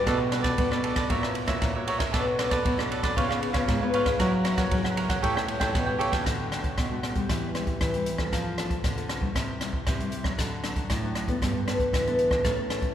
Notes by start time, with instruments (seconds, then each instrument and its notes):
Already playing: nylon-string guitar A3 D4 F#4
0.06 nylon-string guitar B2, cavaquinho D4 A4 B4 D5, kick, cross-stick, ride
0.19 muted cavaquinho stroke
0.31 nylon-string guitar A3 D4 F#4, cavaquinho D4 A4 B4 D5, cross-stick, ride
0.43 cavaquinho A4 B4 D5, kick, cross-stick, ride
0.58 nylon-string guitar F#3 A3 B3 D4 F#4, kick, ride
0.71 nylon-string guitar B2, cavaquinho A4 B4 D5, cross-stick
0.83 cavaquinho D4 A4 B4 D5, ride
0.96 cavaquinho A4 B4 D5, kick, cross-stick, ride
1.10 nylon-string guitar A#2 A#3 E4 F#4 C#5, cavaquinho F#4 A#4 C#5 E5, kick, ride
1.23 cavaquinho A#4 C#5 E5, cross-stick
1.35 muted cavaquinho stroke, ride
1.46 nylon-string guitar A#2 E4 F#4 C#5, cavaquinho A#4 C#5 E5, kick, cross-stick, ride
1.62 nylon-string guitar A#2 A#3, kick, cross-stick, ride
1.75 nylon-string guitar E4 F#4 C#5, cavaquinho A#4 C#5 E5
1.87 cavaquinho F#4 A#4 C#5 E5, ride
1.98 nylon-string guitar D4 A4 C#5, cavaquinho A#4 C#5 E5, kick, cross-stick, ride
2.11 nylon-string guitar B2 B3, cavaquinho D4 A4 B4 D5, kick, cross-stick, ride
2.26 muted cavaquinho stroke
2.39 cavaquinho D4 A4 B4 D5, nylon-string guitar D4 A4 C#5, cross-stick, ride
2.51 cavaquinho A4 B4 D5, kick, cross-stick, ride
2.65 nylon-string guitar F#3 B3 D4 A4 C#5, kick, ride
2.78 nylon-string guitar B2, cavaquinho A4 B4 D5, cross-stick
2.90 cavaquinho D4 A4 B4 D5, ride
3.03 cavaquinho A4 B4 D5, kick, cross-stick, ride
3.16 nylon-string guitar C#3 B3 F4 G#4, cavaquinho F4 B4 C#5 F5, kick, ride
3.29 cavaquinho B4 C#5 F5, cross-stick
3.41 nylon-string guitar B3 F4 G#4, muted cavaquinho stroke, ride
3.53 nylon-string guitar C#3 B3 F4 G#4, cavaquinho B4 C#5 F5, kick, cross-stick, ride
3.68 nylon-string guitar G#2 G#3, kick, cross-stick, ride
3.81 nylon-string guitar B3 F4 G#4, cavaquinho B4 C#5 F5
3.94 cavaquinho F4 B4 C#5 F5, ride
4.06 nylon-string guitar E4 A#4 C#5, cavaquinho B4 C#5 F5, kick, cross-stick, ride
4.19 nylon-string guitar F#3, cavaquinho E4 A#4 C#5 F#5, kick, cross-stick, ride
4.32 muted cavaquinho stroke
4.44 cavaquinho E4 A#4 C#5 F#5, nylon-string guitar E4 A#4 C#5, cross-stick, ride
4.57 cavaquinho A#4 C#5 F#5, kick, cross-stick, ride
4.71 nylon-string guitar C#3 F#3 E4 A#4 C#5, kick, ride
4.84 nylon-string guitar F#3, cavaquinho A#4 C#5 F#5, cross-stick
4.96 cavaquinho E4 A#4 C#5 F#5, ride
5.09 cavaquinho A#4 C#5 F#5, kick, cross-stick, ride
5.22 nylon-string guitar A2 A3 E4 G4 C#5, cavaquinho G4 A4 C#5 G5, kick, ride
5.35 cavaquinho A4 C#5 G5, cross-stick
5.48 nylon-string guitar E4 G4 C#5, muted cavaquinho stroke, ride
5.60 nylon-string guitar A2 E4 G4 C#5, cavaquinho A4 C#5 G5, kick, cross-stick, ride
5.74 nylon-string guitar B2 E3, kick, cross-stick, ride
5.86 nylon-string guitar E4 G4 C#5, cavaquinho A4 C#5 G5
5.98 nylon-string guitar C#3, cavaquinho G4 A4 C#5 G5, ride
6.11 nylon-string guitar A3 D4 F#4, cavaquinho A4 C#5 G5, kick, cross-stick, ride
6.25 nylon-string guitar D3, kick, cross-stick, closed hi-hat
6.51 nylon-string guitar A3 D4 F#4, cross-stick, closed hi-hat
6.64 kick, closed hi-hat
6.78 nylon-string guitar A2 B2, kick, cross-stick, closed hi-hat
6.91 nylon-string guitar A3 D4 F#4
7.03 cross-stick, closed hi-hat
7.15 nylon-string guitar G3 C4 G4, kick, closed hi-hat
7.29 nylon-string guitar E3, kick, cross-stick, closed hi-hat
7.54 nylon-string guitar G3 C4 G4, cross-stick, closed hi-hat
7.67 kick, closed hi-hat
7.81 nylon-string guitar E3, kick, cross-stick, closed hi-hat
7.93 nylon-string guitar G3 C4 G4, closed hi-hat
8.06 closed hi-hat
8.18 nylon-string guitar C4 F4 A4, kick, cross-stick
8.32 nylon-string guitar F3, kick, cross-stick, closed hi-hat
8.57 nylon-string guitar C4 F4 A4, cross-stick, closed hi-hat
8.70 kick, closed hi-hat
8.83 nylon-string guitar C3 D3, kick, cross-stick, closed hi-hat
8.96 nylon-string guitar C4 F4 A4, closed hi-hat
9.09 cross-stick, closed hi-hat
9.20 nylon-string guitar G3 A3 E4, kick
9.34 nylon-string guitar C3, kick, cross-stick, closed hi-hat
9.60 nylon-string guitar G3 A3 E4, cross-stick, closed hi-hat
9.73 kick
9.86 nylon-string guitar G2 C3, kick, cross-stick, closed hi-hat
9.99 nylon-string guitar G3 A3 E4, closed hi-hat
10.12 closed hi-hat
10.23 nylon-string guitar F#3 A3 D4, kick, cross-stick
10.37 nylon-string guitar D3, kick, cross-stick, closed hi-hat
10.63 nylon-string guitar F#3 A3 D4, cross-stick, closed hi-hat
10.76 kick, closed hi-hat
10.89 nylon-string guitar A2, kick, cross-stick, closed hi-hat
11.03 nylon-string guitar F#3 A3 D4
11.15 cross-stick, closed hi-hat
11.27 nylon-string guitar B3 D4 A4, kick, closed hi-hat
11.42 nylon-string guitar G2 G3, kick, cross-stick, closed hi-hat
11.67 nylon-string guitar B3 D4 A4, cross-stick, closed hi-hat
11.79 kick, closed hi-hat
11.93 nylon-string guitar D3 E3, kick, cross-stick, closed hi-hat
12.07 nylon-string guitar B3 D4 A4, closed hi-hat
12.19 closed hi-hat
12.31 kick, cross-stick
12.44 nylon-string guitar A2 A3 C#4 E4 A4, kick, cross-stick, closed hi-hat
12.70 nylon-string guitar C#4 E4 A4, cross-stick, closed hi-hat
12.82 kick, closed hi-hat